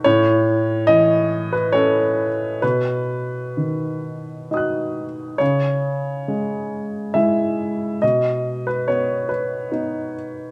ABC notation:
X:1
M:3/4
L:1/16
Q:1/4=69
K:Bmix
V:1 name="Upright piano"
c4 d3 B c4 | B8 [dd'f']4 | c8 e4 | d3 B c2 B4 z2 |]
V:2 name="Upright piano"
A,,4 E,4 [CA]4 | B,,4 D,4 [DF]4 | C,4 G,4 [G,E]4 | B,,4 B,4 [B,D]4 |]